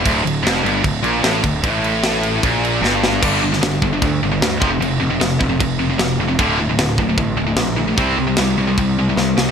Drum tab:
CC |x-x-x-x-x-x-x-x-|x-x-x-x-x-x-----|x---x---x---x---|x---x---x---x---|
SD |----o-------o---|----o-------o-o-|---oo-------o---|----o-------o---|
BD |o-------o-----o-|o-------o-------|o-----o-o-----o-|------o-o-------|

CC |x---x---x---x---|x---x---x-------|
SD |----o-------o---|----o-------o-o-|
BD |o-----o-o-------|o-------o-------|